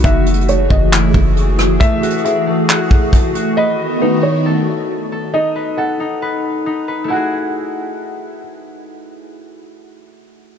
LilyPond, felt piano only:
\new Staff \with { instrumentName = "Felt piano" } { \time 4/4 \key fis \dorian \tempo 4 = 136 e''4 cis''8 dis''8 r2 | e''4 e''4 r2 | dis''4 b'8 cis''8 r2 | dis''4 fis''4 r2 |
fis''2. r4 | r1 | }